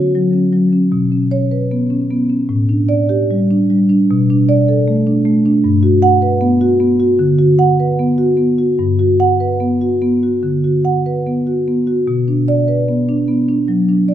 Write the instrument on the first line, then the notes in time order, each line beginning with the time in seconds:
marimba
Already playing: D3 F#4
0.15 F#3
0.33 C#4
0.53 F#3
0.73 C#4
0.92 B2
1.12 C#4
1.31 C#5
1.51 B4
1.71 B3
1.90 C#4
2.11 B3
2.29 C#4
2.49 A2
2.69 D4
2.89 D5
3.09 G4
3.31 G3
3.51 D4
3.70 G3
3.89 D4
4.11 B2
4.30 D4
4.49 D5
4.68 A4
4.88 A3
5.07 D4
5.25 A3
5.46 D4
5.64 G2
5.83 F#4
6.02 F#5
6.22 B4
6.41 B3
6.61 F#4
6.80 B3
7.00 F#4
7.19 D3
7.39 F#4
7.59 F#5
7.80 B4
7.99 B3
8.18 F#4
8.37 B3
8.58 F#4
8.79 G2
8.99 F#4
9.20 F#5
9.40 B4
9.60 B3
9.81 F#4
10.02 B3
10.23 F#4
10.43 D3
10.64 F#4
10.85 F#5
11.06 B4
11.27 B3
11.47 F#4
11.68 B3
11.87 F#4
12.07 B2
12.28 D4
12.48 D5
12.68 B4
12.88 B3
13.09 D4
13.28 B3
13.48 D4
13.68 F#3
13.89 D4
14.08 D5